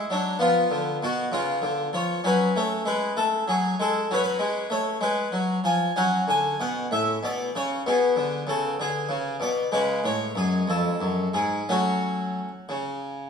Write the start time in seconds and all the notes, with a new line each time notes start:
Already playing: B3 E4
0.10 F#3 D4
0.39 F3 B3 F4
0.71 D3
1.03 B2 F#4
1.32 C#3 F4
1.62 D3
1.93 F3 C#5
2.24 F#3 C#4 B4
2.56 A3 C#5
2.86 G#3 B4
3.17 A3 A4
3.48 F#3 G#4
3.80 G#3 A4
4.11 F#3 C#4 B4
4.16 C#5
4.24 B4
4.39 G#3
4.70 A3 C#5
5.01 G#3 B4
5.32 F#3
5.64 F3 G#5
5.96 F#3 C#4 F#5
6.28 D3 G#5
6.60 B2 F#5
6.91 A2 E5
7.23 B2 D5
7.55 C#3 C#5
7.86 B2 B3 G#4
8.16 D3
8.47 C#3 A4
8.80 D3 G#4
9.09 C#3
9.40 B2 D5
9.72 C#3 G#3 B4
10.04 A2 C#5
10.35 F#2 G#4
10.68 F2 A4
11.01 F#2
11.34 G#2 G#4
11.69 F#3 A3 C#4 F#4
12.69 C#3